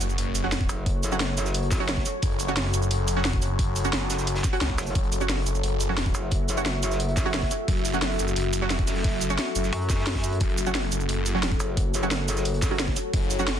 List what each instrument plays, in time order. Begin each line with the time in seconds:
Already playing: ambient pad F#4 A4 C#5, sub drop
0.01 detuned saw bass F#1, closed hi-hat, shaker
0.10 shaker
0.18 detuned saw bass F#1, closed hi-hat
0.35 closed hi-hat, shaker
0.42 synth stab F#3 C#4 F#4, snare
0.52 snare, closed hi-hat
0.61 kick, closed hi-hat
0.69 wobble bass F#1, closed hi-hat, shaker
0.86 kick, closed hi-hat
1.03 closed hi-hat, shaker
1.12 synth stab F#3 C#4 F#4, shaker
1.20 snare, closed hi-hat
1.37 closed hi-hat, shaker
1.45 snare, shaker
1.54 closed hi-hat
1.63 closed hi-hat
1.71 kick, snare, closed hi-hat, open hi-hat, shaker
1.80 synth stab F#3 C#4 F#4
1.89 snare, closed hi-hat, open hi-hat
1.97 kick, snare
2.06 closed hi-hat, shaker
2.22 detuned saw bass F#1, kick, closed hi-hat
2.31 closed hi-hat
2.39 closed hi-hat, shaker
2.48 synth stab F#3 C#4 F#4, shaker
2.56 snare, closed hi-hat, open hi-hat
2.74 detuned saw bass F#1, closed hi-hat, shaker
2.82 shaker
2.91 detuned saw bass F#1, closed hi-hat
3.08 closed hi-hat, shaker
3.16 synth stab F#3 C#4 F#4, snare
3.25 snare, closed hi-hat
3.33 kick
3.42 detuned saw bass F#1, closed hi-hat, shaker
3.59 kick, closed hi-hat
3.76 closed hi-hat, shaker
3.85 synth stab F#3 C#4 F#4, shaker
3.93 detuned saw bass F#1, snare, closed hi-hat
4.10 snare, closed hi-hat, shaker
4.19 snare, shaker
4.27 closed hi-hat
4.35 snare, closed hi-hat
4.44 kick, snare, closed hi-hat, shaker
4.53 synth stab F#3 C#4 F#4, closed hi-hat
4.61 detuned saw bass C#2, snare, closed hi-hat
4.69 kick, snare
4.78 wobble bass F#1, snare, closed hi-hat, open hi-hat, shaker
4.87 shaker
4.95 detuned saw bass F#1, ambient pad E5, kick, closed hi-hat
5.03 closed hi-hat
5.12 closed hi-hat, shaker
5.21 synth stab F#3 C#4 F#4, shaker
5.29 snare, closed hi-hat, open hi-hat
5.46 detuned saw bass F#1, closed hi-hat, shaker
5.55 shaker
5.63 detuned saw bass F#1, closed hi-hat
5.80 closed hi-hat, shaker
5.89 synth stab F#3 C#4 F#4, snare
5.97 snare, closed hi-hat
6.06 kick, closed hi-hat
6.14 wobble bass F#1, closed hi-hat, shaker
6.31 kick, closed hi-hat
6.49 closed hi-hat, shaker
6.57 synth stab F#3 C#4 F#4, shaker
6.66 snare, closed hi-hat
6.83 closed hi-hat, shaker
6.91 snare, shaker
7.00 closed hi-hat
7.08 closed hi-hat
7.17 kick, snare, closed hi-hat, open hi-hat, shaker
7.25 synth stab F#3 C#4 F#4
7.34 snare, closed hi-hat, open hi-hat
7.42 kick, snare
7.51 closed hi-hat, shaker
7.68 detuned saw bass F#1, kick, closed hi-hat
7.76 closed hi-hat
7.85 closed hi-hat, shaker
7.94 synth stab F#3 C#4 F#4, shaker
8.02 snare, closed hi-hat, open hi-hat
8.19 detuned saw bass F#1, closed hi-hat, shaker
8.28 shaker
8.36 detuned saw bass F#1, closed hi-hat
8.53 closed hi-hat, shaker
8.62 synth stab F#3 C#4 F#4, snare
8.70 snare, closed hi-hat
8.79 kick, closed hi-hat
8.87 detuned saw bass F#1, snare, closed hi-hat, open hi-hat, shaker
8.95 snare, open hi-hat
9.04 kick, snare, closed hi-hat, open hi-hat
9.21 closed hi-hat, shaker
9.30 synth stab F#3 C#4 F#4, shaker
9.38 snare, closed hi-hat
9.55 detuned saw bass F#1, closed hi-hat, shaker
9.64 snare, shaker
9.73 wobble bass F#2, closed hi-hat
9.81 closed hi-hat
9.89 kick, snare, closed hi-hat, open hi-hat, shaker
9.98 snare, open hi-hat
10.06 snare, closed hi-hat, open hi-hat
10.15 kick, snare, open hi-hat
10.24 closed hi-hat, shaker
10.33 closed hi-hat
10.40 detuned saw bass F#1, ambient pad C#5, kick, closed hi-hat
10.49 closed hi-hat
10.58 closed hi-hat, shaker
10.66 synth stab F#3 C#4 F#4, shaker
10.75 snare, closed hi-hat, open hi-hat
10.92 detuned saw bass F#1, closed hi-hat, shaker
11.00 shaker
11.09 detuned saw bass F#1, closed hi-hat
11.26 closed hi-hat, shaker
11.35 synth stab F#3 C#4 F#4, snare
11.43 snare, closed hi-hat
11.52 kick, closed hi-hat
11.60 wobble bass F#1, closed hi-hat, shaker
11.77 kick, closed hi-hat
11.94 closed hi-hat, shaker
12.03 synth stab F#3 C#4 F#4, shaker
12.11 snare, closed hi-hat
12.28 closed hi-hat, shaker
12.37 snare, shaker
12.45 closed hi-hat
12.54 closed hi-hat
12.62 kick, snare, closed hi-hat, open hi-hat, shaker
12.71 synth stab F#3 C#4 F#4
12.79 snare, closed hi-hat
12.88 kick, snare
12.96 closed hi-hat, shaker
13.13 detuned saw bass F#1, kick, closed hi-hat
13.22 closed hi-hat
13.31 closed hi-hat, shaker
13.39 synth stab F#3 C#4 F#4, shaker
13.48 snare, closed hi-hat, open hi-hat